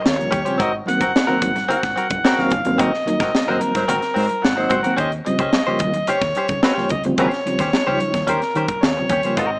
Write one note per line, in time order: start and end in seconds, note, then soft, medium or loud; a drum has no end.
0.01 0.26 D#2 medium
0.01 muted clean electric guitar stroke soft
0.01 muted conga soft
0.06 0.60 C#5 medium
0.06 snare loud
0.16 0.35 C#3 medium
0.16 0.35 F3 medium
0.16 0.35 G3 medium
0.16 0.36 A#3 medium
0.16 muted clean electric guitar stroke medium
0.21 closed hi-hat soft
0.31 0.43 D#2 medium
0.31 0.41 C#4 medium
0.31 0.42 G4 medium
0.31 0.42 C#5 medium
0.31 kick medium
0.31 closed hi-hat medium
0.31 high conga medium
0.31 low conga medium
0.45 0.59 C#3 medium
0.45 0.60 F3 medium
0.45 0.60 G3 medium
0.45 0.60 C4 medium
0.45 0.56 C#4 medium
0.45 0.55 G4 medium
0.45 0.55 C5 medium
0.45 closed hi-hat medium
0.58 0.81 G#1 loud
0.58 0.71 C4 loud
0.58 0.72 F#4 loud
0.58 0.72 A#4 loud
0.58 0.73 D#5 loud
0.58 kick medium
0.58 closed hi-hat medium
0.73 muted clean electric guitar stroke soft
0.86 1.04 D#3 loud
0.86 1.04 F#3 medium
0.86 1.04 A#3 medium
0.86 1.04 C4 loud
0.86 1.66 F#5 loud
0.86 muted clean electric guitar stroke soft
0.86 closed hi-hat medium
0.86 muted conga soft
0.86 high conga medium
1.01 1.11 F#1 medium
1.01 1.12 C4 medium
1.01 1.11 F#4 medium
1.01 1.11 A#4 medium
1.01 kick medium
1.01 closed hi-hat medium
1.15 1.21 A#3 soft
1.15 1.22 D#4 soft
1.15 muted clean electric guitar stroke medium
1.15 snare loud
1.27 1.53 D#3 medium
1.27 1.53 F#3 medium
1.27 1.53 A#3 medium
1.27 1.54 C4 medium
1.27 1.40 C4 medium
1.27 1.41 F#4 medium
1.27 1.40 A#4 medium
1.27 low conga medium
1.42 1.63 G#1 medium
1.42 kick loud
1.42 closed hi-hat medium
1.42 high conga medium
1.56 muted clean electric guitar stroke soft
1.56 snare soft
1.56 closed hi-hat medium
1.56 high conga medium
1.69 1.76 A#3 soft
1.69 1.81 C4 loud
1.69 1.77 D#4 soft
1.69 1.82 F#4 medium
1.69 1.81 A#4 loud
1.69 2.40 F#5 loud
1.69 closed hi-hat medium
1.69 low conga medium
1.82 1.94 G#1 medium
1.82 muted clean electric guitar stroke soft
1.82 kick medium
1.82 snare soft
1.82 closed hi-hat soft
1.96 2.06 C4 medium
1.96 2.07 F#4 medium
1.96 2.07 A#4 medium
1.96 closed hi-hat medium
1.96 muted conga soft
1.96 high conga medium
2.10 2.21 F#1 medium
2.10 muted clean electric guitar stroke soft
2.10 kick loud
2.10 closed hi-hat medium
2.10 high conga medium
2.25 2.49 C4 medium
2.25 2.50 F#4 medium
2.25 2.51 A#4 medium
2.25 snare loud
2.38 2.49 F#1 medium
2.38 2.54 D#3 medium
2.38 2.55 F#3 medium
2.38 2.55 A#3 medium
2.38 2.55 C4 loud
2.38 2.82 F5 loud
2.38 snare soft
2.50 2.62 F#1 medium
2.50 kick medium
2.50 closed hi-hat medium
2.50 muted conga soft
2.50 high conga medium
2.50 low conga medium
2.65 2.80 G1 medium
2.65 2.90 D#3 medium
2.65 2.90 F#3 medium
2.65 2.91 A#3 medium
2.65 2.91 C4 loud
2.65 muted clean electric guitar stroke soft
2.65 closed hi-hat medium
2.78 2.90 G#1 loud
2.78 2.91 C4 medium
2.78 2.92 F#4 medium
2.78 2.92 A#4 medium
2.78 3.64 D#5 loud
2.78 kick loud
2.78 closed hi-hat medium
2.94 snare soft
3.06 3.23 D#3 medium
3.06 3.23 F#3 medium
3.06 3.23 A#3 medium
3.06 3.23 D#4 loud
3.06 muted clean electric guitar stroke soft
3.06 closed hi-hat medium
3.06 muted conga soft
3.06 high conga medium
3.20 3.31 G#1 medium
3.20 3.32 C4 soft
3.20 3.31 F#4 medium
3.20 3.30 A#4 medium
3.20 kick loud
3.20 snare soft
3.20 closed hi-hat medium
3.34 3.40 A#3 soft
3.34 3.41 C4 soft
3.34 muted clean electric guitar stroke soft
3.34 muted fingered electric bass stroke soft
3.34 snare loud
3.47 3.60 F#1 loud
3.47 3.73 D#3 medium
3.47 3.57 F#3 medium
3.47 3.73 F#3 medium
3.47 3.73 A#3 medium
3.47 3.73 C4 medium
3.47 3.59 C4 medium
3.47 3.57 D#4 medium
3.47 3.60 F#4 medium
3.47 3.60 A#4 medium
3.47 3.56 C5 medium
3.47 low conga medium
3.61 4.47 A#4 medium
3.61 muted clean electric guitar stroke soft
3.61 closed hi-hat medium
3.61 high conga medium
3.75 3.86 G#1 medium
3.75 3.84 F#3 loud
3.75 3.84 D#4 medium
3.75 3.84 C5 loud
3.75 muted clean electric guitar stroke soft
3.75 kick medium
3.75 snare soft
3.75 closed hi-hat medium
3.75 high conga medium
3.88 4.00 G#1 loud
3.88 3.95 A#3 soft
3.88 4.01 C4 medium
3.88 3.96 C4 soft
3.88 4.01 F#4 medium
3.88 3.99 A#4 medium
3.88 closed hi-hat loud
3.88 low conga medium
4.01 muted clean electric guitar stroke soft
4.01 snare soft
4.01 closed hi-hat soft
4.14 4.27 G#2 loud
4.14 4.25 F#3 medium
4.14 4.25 C4 medium
4.14 4.25 D#4 medium
4.14 4.25 F#4 medium
4.14 4.26 A#4 medium
4.14 4.25 C5 loud
4.14 open hi-hat medium
4.14 muted conga soft
4.28 muted clean electric guitar stroke soft
4.28 closed hi-hat soft
4.28 high conga medium
4.42 4.65 G#1 medium
4.42 4.99 F#5 medium
4.42 muted clean electric guitar stroke soft
4.42 snare loud
4.56 4.74 D#3 medium
4.56 4.74 F#3 medium
4.56 4.74 A#3 medium
4.56 4.75 C4 medium
4.56 4.74 D#4 loud
4.56 4.74 C5 loud
4.56 muted clean electric guitar stroke soft
4.70 4.82 G#1 loud
4.70 4.80 C4 medium
4.70 4.81 F#4 medium
4.70 4.81 C5 medium
4.70 kick medium
4.70 closed hi-hat medium
4.70 high conga medium
4.70 low conga medium
4.83 4.98 D#3 medium
4.83 4.98 F#3 medium
4.83 4.98 A#3 medium
4.83 4.94 C4 medium
4.83 4.99 C4 loud
4.83 4.94 F#4 medium
4.83 4.94 A#4 medium
4.83 closed hi-hat medium
4.97 5.20 D#2 loud
4.97 5.10 C#4 medium
4.97 5.10 G4 medium
4.97 5.10 C5 medium
4.97 5.12 D#5 medium
4.97 kick medium
4.97 closed hi-hat medium
5.11 muted clean electric guitar stroke soft
5.11 closed hi-hat soft
5.25 5.42 C#3 medium
5.25 5.43 F3 medium
5.25 5.43 G3 medium
5.25 5.43 C4 medium
5.25 6.11 D#5 loud
5.25 muted clean electric guitar stroke soft
5.25 closed hi-hat medium
5.25 high conga medium
5.39 5.50 C#2 medium
5.39 5.50 C#4 medium
5.39 5.50 G4 medium
5.39 5.50 C5 medium
5.39 kick medium
5.39 closed hi-hat medium
5.53 5.60 G3 soft
5.53 5.60 C4 soft
5.53 snare loud
5.53 muted conga soft
5.67 5.92 C#3 medium
5.67 5.92 F3 medium
5.67 5.92 G3 medium
5.67 5.92 A#3 medium
5.67 5.80 C#4 medium
5.67 5.80 G4 medium
5.67 5.79 C5 medium
5.67 low conga medium
5.79 6.02 D#2 medium
5.79 muted clean electric guitar stroke soft
5.79 kick medium
5.79 closed hi-hat medium
5.79 muted conga soft
5.79 high conga medium
5.94 muted clean electric guitar stroke soft
5.94 closed hi-hat medium
5.94 high conga medium
6.07 6.15 G3 soft
6.07 6.15 A#3 soft
6.07 6.21 C#4 medium
6.07 6.21 G4 medium
6.07 6.20 C5 medium
6.07 6.63 C#5 loud
6.07 closed hi-hat medium
6.07 muted conga soft
6.07 low conga medium
6.21 6.32 D#2 medium
6.21 muted clean electric guitar stroke medium
6.21 kick medium
6.21 snare soft
6.35 6.46 C#4 medium
6.35 6.46 G4 medium
6.35 6.47 C5 medium
6.35 closed hi-hat medium
6.35 muted conga soft
6.35 high conga soft
6.48 6.60 C#2 medium
6.48 muted clean electric guitar stroke soft
6.48 kick loud
6.48 closed hi-hat soft
6.48 high conga medium
6.63 6.74 C4 medium
6.63 6.89 G4 medium
6.63 6.89 C5 medium
6.63 6.88 C#5 medium
6.63 snare loud
6.63 muted conga soft
6.74 6.88 C#2 medium
6.74 6.94 C#3 medium
6.74 6.94 F3 medium
6.74 6.94 G3 medium
6.74 6.94 A#3 medium
6.74 6.88 C#4 medium
6.74 snare soft
6.89 7.01 C#2 medium
6.89 7.03 D#5 medium
6.89 muted clean electric guitar stroke soft
6.89 kick medium
6.89 closed hi-hat medium
6.89 muted conga soft
6.89 high conga medium
6.89 low conga medium
7.04 7.18 D2 medium
7.04 7.29 C#3 medium
7.04 7.30 F3 medium
7.04 7.30 G3 medium
7.04 7.30 C4 loud
7.04 muted clean electric guitar stroke soft
7.04 closed hi-hat medium
7.18 7.29 D#2 loud
7.18 7.39 C#4 medium
7.18 7.33 G4 medium
7.18 7.28 G#4 medium
7.18 7.27 A#4 medium
7.18 7.31 C5 medium
7.18 8.24 C#5 loud
7.18 kick medium
7.18 closed hi-hat medium
7.31 muted clean electric guitar stroke soft
7.31 snare soft
7.31 closed hi-hat soft
7.46 7.62 C#3 medium
7.46 7.62 F3 medium
7.46 7.63 G3 medium
7.46 7.63 C4 medium
7.46 muted clean electric guitar stroke soft
7.46 closed hi-hat medium
7.46 muted conga soft
7.46 high conga medium
7.59 7.70 D#2 medium
7.59 7.70 C#4 medium
7.59 7.70 G4 medium
7.59 7.69 C5 medium
7.59 kick medium
7.59 snare soft
7.59 closed hi-hat medium
7.73 7.80 G3 soft
7.73 7.80 D#4 soft
7.73 muted fingered electric bass stroke soft
7.73 muted clean electric guitar stroke soft
7.73 snare loud
7.73 muted conga soft
7.87 7.97 C#2 medium
7.87 8.12 C#3 medium
7.87 8.12 F3 medium
7.87 8.12 G3 medium
7.87 7.99 C#4 medium
7.87 8.13 D#4 medium
7.87 7.99 G4 medium
7.87 7.99 C5 medium
7.87 low conga medium
8.00 muted clean electric guitar stroke soft
8.00 closed hi-hat medium
8.00 muted conga soft
8.00 high conga medium
8.14 8.25 D#2 medium
8.14 muted clean electric guitar stroke soft
8.14 kick medium
8.14 snare soft
8.14 closed hi-hat medium
8.14 high conga medium
8.27 8.39 D#2 loud
8.27 8.34 G3 soft
8.27 8.40 C#4 medium
8.27 8.35 C#4 soft
8.27 8.41 G4 loud
8.27 8.85 A#4 medium
8.27 8.41 C5 medium
8.27 closed hi-hat loud
8.27 muted conga soft
8.27 low conga medium
8.42 muted clean electric guitar stroke soft
8.42 snare soft
8.42 closed hi-hat soft
8.55 8.66 D#3 loud
8.55 8.65 C#4 medium
8.55 8.66 G4 medium
8.55 8.66 C5 medium
8.55 closed hi-hat medium
8.55 muted conga soft
8.55 high conga medium
8.68 kick loud
8.68 closed hi-hat soft
8.68 high conga medium
8.82 9.04 D#2 medium
8.82 9.40 C#5 medium
8.82 muted clean electric guitar stroke soft
8.82 snare loud
8.82 muted conga soft
8.97 9.13 C#3 medium
8.97 9.13 F3 medium
8.97 9.14 G3 medium
8.97 9.14 C4 medium
8.97 muted clean electric guitar stroke soft
9.09 9.20 D#2 medium
9.09 9.20 C#4 medium
9.09 9.21 G4 medium
9.09 9.21 C#5 medium
9.09 kick medium
9.09 closed hi-hat medium
9.09 high conga medium
9.09 low conga medium
9.23 9.37 C#3 loud
9.23 9.38 F3 medium
9.23 9.38 G3 medium
9.23 9.38 A#3 loud
9.23 9.35 C#4 medium
9.23 9.35 G4 soft
9.23 9.34 C5 medium
9.23 closed hi-hat medium
9.37 9.59 G#1 loud
9.37 9.57 C4 medium
9.37 9.51 F#4 medium
9.37 9.49 A#4 medium
9.37 9.59 D#5 medium
9.37 kick medium
9.37 closed hi-hat medium
9.51 muted clean electric guitar stroke soft